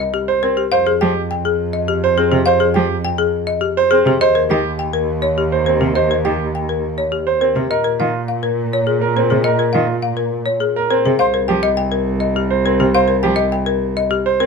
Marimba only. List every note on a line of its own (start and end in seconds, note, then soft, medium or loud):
0.00 0.18 D#5 medium
0.14 0.32 G4 medium
0.43 0.62 A#4 medium
0.57 0.76 G4 medium
0.72 0.91 F5 medium
0.87 1.05 G#4 medium
1.01 1.20 G5 medium
1.31 1.49 G5 medium
1.45 1.64 G#4 medium
1.73 1.92 D#5 medium
1.88 2.07 G4 medium
2.18 2.36 G#4 medium
2.32 2.51 G4 medium
2.46 2.65 F5 medium
2.60 2.80 G#4 medium
2.74 2.94 G5 medium
3.05 3.23 G5 medium
3.18 3.38 G#4 medium
3.47 3.67 D#5 medium
3.61 3.81 G4 medium
3.91 4.10 G#4 medium
4.07 4.26 G4 medium
4.21 4.40 D#5 medium
4.35 4.54 A#4 medium
4.51 4.69 G5 medium
4.79 4.98 G5 medium
4.93 5.13 A#4 medium
5.22 5.42 C#5 medium
5.38 5.57 G4 medium
5.66 5.85 A#4 medium
5.81 6.00 G4 soft
5.95 6.15 D#5 medium
6.11 6.29 A#4 medium
6.25 6.44 G5 medium
6.55 6.73 G5 medium
6.69 6.88 A#4 soft
6.98 7.17 C#5 medium
7.12 7.31 G4 medium
7.41 7.60 A#4 medium
7.56 7.75 G4 soft
7.71 7.90 D#5 medium
7.84 8.04 A#4 medium
8.00 8.19 F5 soft
8.28 8.48 F5 medium
8.43 8.62 A#4 medium
8.73 8.92 C#5 medium
8.87 9.06 G#4 medium
9.17 9.35 A#4 medium
9.30 9.50 G#4 medium
9.44 9.64 D#5 medium
9.59 9.79 A#4 medium
9.73 9.93 F5 medium
10.03 10.22 F5 medium
10.17 10.37 A#4 medium
10.46 10.66 C#5 medium
10.60 10.80 G#4 medium
10.91 11.10 A#4 medium
11.05 11.24 G#4 medium
11.19 11.39 F5 medium
11.34 11.53 A#4 medium
11.48 11.68 G5 medium
11.63 11.82 D#5 medium
11.77 11.97 G5 medium
11.92 12.11 A#4 medium
12.20 12.40 D#5 medium
12.36 12.55 G4 medium
12.66 12.85 A#4 medium
12.80 12.99 G4 medium
12.95 13.14 F5 medium
13.08 13.28 A#4 medium
13.23 13.43 G5 medium
13.36 13.57 D#5 medium
13.52 13.72 G5 medium
13.66 13.86 A#4 medium
13.97 14.16 D#5 medium
14.11 14.30 G4 medium
14.40 14.46 A#4 medium